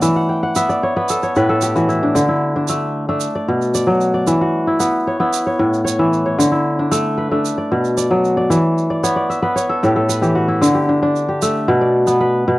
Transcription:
0.00 1.13 E3 medium
0.00 0.82 A3 medium
0.00 0.50 D4 medium
0.00 0.69 D5 medium
0.00 shaker medium
0.16 0.43 F#5 medium
0.29 1.22 G5 medium
0.43 1.39 F#5 medium
0.55 0.96 B3 medium
0.55 1.59 E5 medium
0.55 shaker medium
0.69 1.29 D5 medium
0.69 shaker soft
0.83 1.23 C#5 medium
0.96 2.83 B3 medium
0.96 1.36 B4 medium
1.09 1.49 A4 medium
1.09 shaker medium
1.23 2.09 C#5 medium
1.23 shaker soft
1.35 2.19 A2 medium
1.35 2.60 B4 medium
1.35 shaker soft
1.49 2.81 A4 medium
1.61 3.04 G4 medium
1.61 shaker medium
1.75 2.19 E3 medium
1.75 3.22 F#4 medium
1.75 shaker soft
1.89 2.28 E4 medium
1.89 shaker soft
2.03 2.55 D4 medium
2.15 3.25 D3 medium
2.15 shaker medium
2.29 3.85 E4 medium
2.56 3.08 D4 medium
2.68 3.08 A3 medium
2.68 shaker medium
3.09 5.08 A3 medium
3.09 4.77 D4 medium
3.20 shaker medium
3.35 3.74 D5 medium
3.48 4.31 B2 medium
3.62 shaker soft
3.74 4.14 D5 medium
3.74 shaker medium
3.87 4.31 F#3 medium
4.01 shaker soft
4.14 5.13 D5 medium
4.27 5.37 E3 medium
4.27 shaker medium
4.41 5.87 F#4 medium
4.67 5.20 E4 medium
4.80 5.19 B3 medium
4.80 shaker medium
5.07 5.46 C#5 medium
5.20 7.06 B3 medium
5.20 6.51 E4 medium
5.33 shaker medium
5.47 5.84 C#5 medium
5.59 6.43 A2 medium
5.73 shaker soft
5.85 6.25 C#5 medium
5.85 shaker medium
5.99 6.43 E3 medium
6.13 shaker soft
6.26 6.85 C#5 medium
6.39 7.49 D3 medium
6.39 shaker medium
6.52 8.08 E4 medium
6.79 7.31 D4 medium
6.91 7.31 A3 medium
6.91 shaker medium
7.18 8.40 B4 medium
7.31 9.31 A3 medium
7.31 9.00 D4 medium
7.45 shaker medium
7.58 7.97 D5 medium
7.72 8.55 B2 medium
7.84 shaker soft
7.97 8.37 D5 medium
7.97 shaker medium
8.11 8.55 F#3 medium
8.24 shaker soft
8.37 8.90 D5 medium
8.50 9.61 E3 medium
8.50 shaker medium
8.78 shaker soft
8.90 9.16 D5 medium
9.03 9.42 B3 medium
9.03 9.55 C#5 medium
9.03 shaker medium
9.16 9.62 D5 medium
9.30 10.33 E5 medium
9.30 shaker soft
9.42 11.29 B3 medium
9.42 10.09 B4 medium
9.56 10.68 C#5 medium
9.56 shaker medium
9.69 9.96 A4 medium
9.83 10.67 A2 medium
9.83 10.22 G4 medium
9.83 shaker soft
9.96 11.28 A4 medium
10.09 11.32 B4 medium
10.09 shaker medium
10.22 10.67 E3 medium
10.22 10.74 G4 medium
10.22 shaker soft
10.35 10.81 F#4 medium
10.48 12.05 E4 medium
10.62 11.72 D3 medium
10.62 shaker medium
10.75 11.28 G4 medium
10.89 11.02 D4 medium
11.03 12.59 D4 medium
11.16 shaker soft
11.29 12.59 G4 medium
11.42 12.59 A3 medium
11.42 shaker medium
11.68 12.47 B2 medium
11.81 12.59 D5 medium
12.07 12.59 B3 medium
12.07 shaker soft
12.20 12.59 B4 medium
12.48 12.59 B2 medium

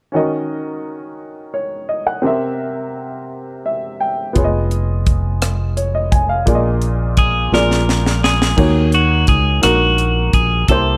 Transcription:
0.12 1.16 D#3 soft
0.12 2.20 C#4 soft
0.12 2.21 F#4 soft
0.12 2.22 A#4 soft
0.16 1.53 D#5 medium
1.54 1.88 C#5 soft
1.89 2.06 D#5 soft
2.07 2.40 F#5 soft
2.22 3.26 C3 soft
2.22 4.31 C4 soft
2.22 4.31 G4 soft
2.22 4.32 A#4 soft
2.27 3.64 E5 medium
3.66 3.98 E5 soft
4.00 4.33 G5 soft
4.33 6.43 F1 medium
4.33 6.42 B3 soft
4.33 6.42 F4 soft
4.33 6.43 G#4 medium
4.33 kick medium
4.33 closed hi-hat medium
4.37 4.43 C#5 soft
4.44 5.44 D#5 medium
4.71 closed hi-hat soft
5.06 kick medium
5.06 closed hi-hat soft
5.42 cross-stick medium
5.42 closed hi-hat medium
5.77 5.94 C#5 soft
5.77 closed hi-hat soft
5.95 6.11 D#5 soft
6.12 6.29 G#5 soft
6.12 kick medium
6.12 closed hi-hat soft
6.29 6.63 F5 soft
6.46 7.48 A#1 medium
6.46 7.48 A#2 medium
6.46 7.51 A#3 medium
6.46 7.51 F4 soft
6.46 7.52 G#4 soft
6.46 6.54 D5 soft
6.46 kick medium
6.46 closed hi-hat medium
6.55 7.57 D#5 medium
6.82 closed hi-hat soft
7.17 7.54 G#4 medium
7.17 kick medium
7.17 closed hi-hat soft
7.52 8.54 A#1 medium
7.52 8.54 A#2 medium
7.52 8.55 A#3 medium
7.52 8.58 F4 soft
7.52 8.59 G#4 soft
7.52 8.24 A#4 medium
7.52 8.59 D5 medium
7.52 snare soft
7.71 snare soft
7.89 snare medium
8.06 snare soft
8.24 8.90 G#4 medium
8.24 snare medium
8.42 snare medium
8.56 9.24 D#2 medium
8.56 9.59 D#3 soft
8.56 9.46 A#3 medium
8.56 9.46 D#4 medium
8.56 9.47 F#4 medium
8.56 9.47 C#5 medium
8.56 kick medium
8.56 crash medium
8.92 9.28 F#4 medium
8.92 closed hi-hat soft
9.27 9.61 C#2 medium
9.27 9.63 G#4 medium
9.27 kick medium
9.27 closed hi-hat soft
9.61 10.30 A#1 medium
9.61 10.51 A#3 soft
9.61 10.52 D#4 soft
9.61 10.52 F#4 soft
9.61 10.34 F#4 medium
9.61 10.53 A#4 medium
9.61 cross-stick medium
9.61 closed hi-hat medium
9.98 closed hi-hat soft
10.33 10.66 A#1 medium
10.33 10.69 G#4 medium
10.33 kick medium
10.33 closed hi-hat soft
10.68 10.97 C2 medium
10.68 10.97 C3 soft
10.68 10.97 A#3 medium
10.68 10.97 E4 medium
10.68 10.97 G4 medium
10.68 10.97 A4 medium
10.68 10.97 C5 medium
10.68 kick medium
10.68 closed hi-hat medium

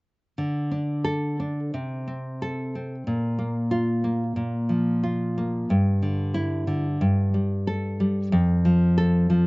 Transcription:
0.38 1.70 D3 soft
0.71 1.38 D4 soft
1.04 1.59 A4 medium
1.40 1.74 D4 soft
1.74 3.03 C3 soft
2.08 2.74 C4 soft
2.42 2.94 A4 medium
2.75 3.07 C4 soft
3.07 4.32 A#2 soft
3.39 4.03 A#3 soft
3.71 4.23 F4 medium
4.04 5.03 A#3 soft
4.36 5.64 A#2 soft
4.69 5.68 F3 soft
5.03 5.68 F4 soft
5.38 5.69 A#3 soft
5.70 6.97 G2 medium
6.02 6.66 D3 soft
6.34 6.87 E4 medium
6.67 7.00 D3 soft
7.01 8.29 G2 soft
7.34 7.99 G3 soft
7.67 8.20 A4 medium
8.00 8.33 G3 soft
8.32 9.47 F2 medium
8.65 9.29 F3 soft
8.98 9.47 A4 medium
9.30 9.47 F3 soft

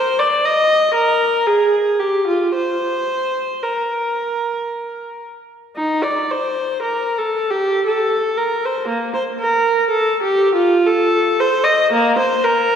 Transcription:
0.00 0.18 C5 loud
0.19 0.44 D5 medium
0.45 0.95 D#5 medium
0.95 1.45 A#4 loud
1.48 2.00 G#4 medium
2.00 2.27 G4 medium
2.28 2.54 F4 medium
2.55 3.60 C5 medium
3.63 5.22 A#4 medium
5.76 6.04 D#4 medium
6.02 6.30 D5 medium
6.31 6.83 C5 medium
6.83 7.17 A#4 medium
7.18 7.52 A4 medium
7.51 7.85 G4 medium
7.87 8.37 A4 medium
8.38 8.63 A#4 medium
8.66 8.89 C5 medium
8.89 9.13 A#3 medium
9.14 9.22 C5 medium
9.40 9.88 A#4 medium
9.91 10.22 A4 medium
10.23 10.55 G4 medium
10.55 10.87 F4 medium
10.87 11.38 A4 loud
11.40 11.65 C5 loud
11.64 11.91 D#5 medium
11.93 12.18 A#3 loud
12.19 12.44 C5 medium
12.44 12.76 A#4 medium

